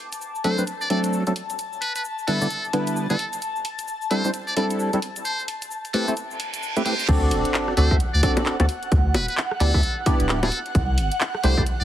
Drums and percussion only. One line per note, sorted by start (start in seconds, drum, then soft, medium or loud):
0.12 closed hi-hat medium
0.12 cabasa medium
0.21 cabasa soft
0.35 cabasa soft
0.44 open hi-hat medium
0.58 cabasa medium
0.67 closed hi-hat medium
0.67 cabasa soft
0.81 cabasa soft
0.90 open hi-hat medium
1.04 closed hi-hat medium
1.04 cabasa medium
1.13 cabasa medium
1.27 closed hi-hat soft
1.27 cabasa soft
1.36 open hi-hat medium
1.50 closed hi-hat soft
1.50 cabasa medium
1.59 closed hi-hat medium
1.59 cabasa soft
1.73 cabasa soft
1.82 open hi-hat medium
1.96 closed hi-hat medium
1.96 cabasa medium
2.05 cabasa medium
2.19 cabasa soft
2.28 open hi-hat medium
2.41 cabasa medium
2.50 closed hi-hat medium
2.50 cabasa soft
2.64 cabasa soft
2.73 open hi-hat medium
2.87 closed hi-hat medium
2.87 cabasa medium
2.96 cabasa medium
3.10 closed hi-hat medium
3.10 cabasa soft
3.19 open hi-hat medium
3.33 closed hi-hat soft
3.33 cabasa medium
3.42 closed hi-hat medium
3.42 cabasa soft
3.56 cabasa soft
3.65 open hi-hat loud
3.79 closed hi-hat medium
3.79 cabasa medium
3.88 cabasa soft
4.02 cabasa soft
4.11 open hi-hat medium
4.25 cabasa medium
4.34 closed hi-hat medium
4.34 cabasa soft
4.47 cabasa soft
4.57 open hi-hat loud
4.70 closed hi-hat medium
4.70 cabasa medium
4.79 cabasa medium
4.93 closed hi-hat medium
4.93 cabasa soft
5.02 open hi-hat medium
5.16 closed hi-hat soft
5.16 cabasa medium
5.25 closed hi-hat medium
5.25 cabasa soft
5.39 cabasa soft
5.48 open hi-hat loud
5.62 closed hi-hat medium
5.62 cabasa medium
5.71 cabasa soft
5.85 closed hi-hat soft
5.85 cabasa soft
5.94 open hi-hat medium
6.08 cabasa medium
6.17 closed hi-hat medium
6.17 cabasa soft
6.31 cabasa soft
6.40 open hi-hat loud
6.54 closed hi-hat medium
6.54 cabasa medium
6.63 cabasa soft
6.77 closed hi-hat medium
6.77 cabasa soft
6.86 open hi-hat medium
6.99 closed hi-hat soft
6.99 cabasa medium
7.08 kick loud
7.08 closed hi-hat medium
7.08 crash loud
7.31 open hi-hat loud
7.45 closed hi-hat medium
7.54 clap loud
7.68 cross-stick medium
7.77 open hi-hat medium
7.91 kick loud
8.00 closed hi-hat medium
8.23 kick loud
8.23 open hi-hat loud
8.37 closed hi-hat medium
8.37 high bongo medium
8.46 clap loud
8.60 closed hi-hat medium
8.60 high bongo medium
8.69 open hi-hat medium
8.83 closed hi-hat soft
8.92 kick loud
8.92 closed hi-hat medium
9.14 open hi-hat loud
9.14 high bongo medium
9.28 closed hi-hat medium
9.37 clap loud
9.51 cross-stick medium
9.60 open hi-hat medium
9.74 kick loud
9.83 closed hi-hat medium
10.06 kick loud
10.06 open hi-hat loud
10.20 closed hi-hat medium
10.29 clap loud
10.43 closed hi-hat medium
10.43 high bongo medium
10.52 open hi-hat medium
10.66 closed hi-hat soft
10.75 kick loud
10.75 closed hi-hat medium
10.98 open hi-hat loud
11.12 closed hi-hat medium
11.21 clap loud
11.35 cross-stick medium
11.44 open hi-hat medium
11.57 kick loud
11.66 closed hi-hat medium